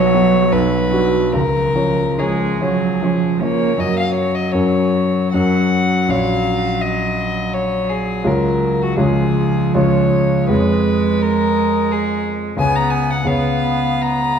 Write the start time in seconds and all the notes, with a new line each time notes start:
Already playing: B1 F#3 B3 F#4 C#5
0.14 F#3 B3 F#4
0.52 B1 B4
0.92 F#3 D4 F#4
1.32 C#2 F3 A#4
1.75 F3 C#4 C#5
2.18 F3 G#3 C#4 G#4 C#5
2.61 F3 F#3 C#4 C#5
3.02 F3 C#4 C#5
3.41 F3 A#3 C#4 C#5
3.78 F#2 F#3 C#4 A#4 D#5
3.82 F#3
3.99 F5
4.15 C#5
4.35 D#5
4.52 F#2 F#3 C#4 A#4 C#5
5.33 F#2 F#3 C#4 A#4 F#5
6.08 A#1 F#3 C#4 C#5 F5
6.81 D#5
7.54 C#5
7.90 G#4
8.24 C#2 G#3 F4 A#4 C#5
8.83 F#4
8.97 C#2 F3 G#3 F4 G#4 C#5
9.74 C#2 G#3 F4 C#5
10.49 F2 G#3 G#4 B4 C#5
11.22 A#4
11.92 G#4
12.57 C#2 B3 G#4 C#5 G#5
12.75 A#5
12.90 G#5
13.11 F#5
13.25 C#2 B3 G#4 C#5 F5
14.02 A#5